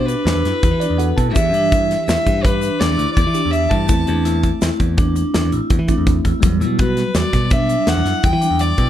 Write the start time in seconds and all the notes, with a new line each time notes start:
Already playing: B2 B3 F#4 G4
0.06 D4 B4, closed hi-hat, shaker
0.25 E2 D4, snare, closed hi-hat
0.35 E2
0.45 F#2 E4, snare, closed hi-hat
0.63 E2, kick, closed hi-hat, shaker
0.71 E3
0.80 D4 D5, closed hi-hat, shaker
0.90 E2
0.97 B3 F#4 A4 F#5, closed hi-hat, shaker
1.17 B2 E4 A5, kick, closed hi-hat
1.33 E2 E3 D4 G4 E5, kick, closed hi-hat, shaker
1.53 G2 D4, closed hi-hat
1.72 E4, kick, closed hi-hat
1.91 snare, closed hi-hat
2.06 E2 E4 E5, snare, closed hi-hat, shaker
2.26 G2, kick, closed hi-hat
2.44 D4 B4, kick, closed hi-hat
2.62 D4, closed hi-hat, shaker
2.79 E2 D4 D5, snare, closed hi-hat
2.91 E2
2.97 D2 E4, closed hi-hat
3.14 E2 D5, kick, closed hi-hat, shaker
3.27 E3
3.34 E3 D4 G4, closed hi-hat, shaker
3.45 E2
3.51 E5, closed hi-hat, shaker
3.69 G2 E4 A5, kick, closed hi-hat
3.87 E2 A3 C4 E4, kick, closed hi-hat, shaker
4.07 E2 D4, closed hi-hat
4.25 E4, snare, closed hi-hat
4.43 kick, closed hi-hat
4.61 E2 E4, snare, closed hi-hat, shaker
4.80 E2, kick, closed hi-hat
4.97 D4, kick, closed hi-hat
5.16 D4, closed hi-hat, shaker
5.34 E2 D4, snare, closed hi-hat
5.44 E2
5.52 A1 E4, closed hi-hat, shaker
5.70 E2, kick, closed hi-hat
5.79 E3
5.88 A3 C4 D4 E4, kick, closed hi-hat, shaker
5.98 E2
6.07 kick, closed hi-hat
6.25 E2 E4, kick, closed hi-hat
6.40 E2 F#3 G3 B3, kick, closed hi-hat, shaker
6.60 B2 E4, closed hi-hat
6.79 F#4 B4, kick, closed hi-hat
6.97 snare, closed hi-hat
7.15 E2 F#4 D5, snare, closed hi-hat, shaker
7.33 B2, kick, snare, closed hi-hat
7.50 D4 E5, kick, closed hi-hat
7.69 D4, closed hi-hat, shaker
7.87 E2 D4 F#5, snare, closed hi-hat
7.97 E2
8.04 F#2 E4, snare, closed hi-hat
8.23 E2 G5, kick, closed hi-hat, shaker
8.33 E3
8.41 D4, closed hi-hat, shaker
8.50 E2
8.59 D5, closed hi-hat, shaker
8.78 B2 E4, kick, closed hi-hat